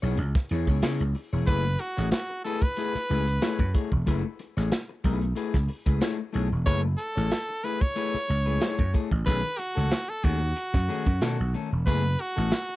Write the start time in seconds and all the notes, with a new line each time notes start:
0.02 B1 B3 E4 G#4 C#5
0.17 C#2, muted clean electric guitar stroke, closed hi-hat
0.35 muted clean electric guitar stroke, kick, snare
0.49 E2 B3 E4 G#4 C#5, closed hi-hat
0.67 C#2 B3 E4 G#4 C#5, kick
0.82 C#3 B3 E4 G#4 C#5, snare, closed hi-hat
0.99 C#2, closed hi-hat
1.15 muted clean electric guitar stroke, open hi-hat
1.33 E1 B3 E4 G#4 C#5
1.47 F#1 A3 E4 G#4 B4, kick, closed hi-hat
1.65 muted clean electric guitar stroke
1.79 F#4, muted clean electric guitar stroke, closed hi-hat
1.97 A1 A3 E4 G#4 C#5, snare
2.11 F#4, snare, closed hi-hat
2.30 muted clean electric guitar stroke
2.44 A3 E4 G#4 A4 B4, closed hi-hat
2.61 B4, muted clean electric guitar stroke, kick, closed hi-hat
2.76 A3 E4 G#4 B4, closed hi-hat
2.94 muted clean electric guitar stroke, muted slap bass stroke, snare
3.08 C#2 A3 E4 G#4 B4, open hi-hat
3.27 muted clean electric guitar stroke, closed hi-hat
3.41 A3 E4 G#4 C#5, snare, closed hi-hat
3.59 F#2, muted clean electric guitar stroke, kick
3.74 A3 E4 G#4 C#5, kick, closed hi-hat
3.91 E1, muted clean electric guitar stroke, kick
4.06 F#1 A3 E4 G#4 B4, kick, closed hi-hat
4.24 muted clean electric guitar stroke
4.39 muted clean electric guitar stroke, closed hi-hat
4.57 A1 A3 E4 G#4 C#5, snare
4.72 snare, closed hi-hat
4.89 muted clean electric guitar stroke
5.04 B1 A3 E4 G#4 B4, kick, closed hi-hat
5.21 muted clean electric guitar stroke, closed hi-hat
5.35 A3 E4 G#4 B4, closed hi-hat
5.54 C#2, kick, snare
5.68 muted clean electric guitar stroke, open hi-hat
5.86 C#2 A3 E4 G#4 B4, kick, closed hi-hat
6.01 A3 E4 G#4 C#5, snare, closed hi-hat
6.18 muted clean electric guitar stroke
6.33 B1 A3 E4 G#4 C#5, closed hi-hat
6.50 E1, muted clean electric guitar stroke
6.66 F#1 A3 E4 G#4 B4 C#5, kick, closed hi-hat
6.83 muted clean electric guitar stroke
6.98 A4, muted clean electric guitar stroke, closed hi-hat
7.16 A1 A3 E4 G#4 C#5, snare
7.31 snare, closed hi-hat
7.49 muted clean electric guitar stroke
7.64 A3 E4 G#4 B4, closed hi-hat
7.81 C#5, muted clean electric guitar stroke, kick, closed hi-hat
7.96 A3 E4 G#4 B4, closed hi-hat
8.14 muted slap bass stroke, snare
8.28 C#2, muted clean electric guitar stroke, open hi-hat
8.46 A3 E4 G#4 B4, closed hi-hat
8.60 A3 E4 G#4 C#5, snare, closed hi-hat
8.78 F#2, muted clean electric guitar stroke, kick
8.93 A3 E4 G#4 C#5, kick, closed hi-hat
9.11 A1, kick
9.26 B1 D#3 A3 C#4 G#4 B4, kick, closed hi-hat
9.43 muted clean electric guitar stroke
9.58 F#4, muted clean electric guitar stroke, closed hi-hat
9.75 C#2 D#3 A3 C#4 A4, snare
9.91 snare, closed hi-hat
10.08 A4, muted clean electric guitar stroke
10.23 D#2 D#3 A3 C#4 F#4 G#4, kick, closed hi-hat
10.41 muted clean electric guitar stroke
10.56 muted clean electric guitar stroke, closed hi-hat
10.73 F#2, muted clean electric guitar stroke, kick, snare
10.88 D#3 A3 C#4 G#4, open hi-hat
11.06 F#2, muted clean electric guitar stroke, kick, closed hi-hat
11.21 B2 D#3 A3 C#4 A4, snare, closed hi-hat
11.38 B1, muted clean electric guitar stroke
11.54 D#3 A3 C#4 A4, closed hi-hat
11.71 E1, muted clean electric guitar stroke
11.87 F#1 A3 B3 E4 G#4 B4, kick, closed hi-hat
12.04 muted clean electric guitar stroke
12.19 F#4, muted clean electric guitar stroke, closed hi-hat
12.36 A1 A3 B3 E4 A4, snare
12.51 snare, closed hi-hat
12.69 muted clean electric guitar stroke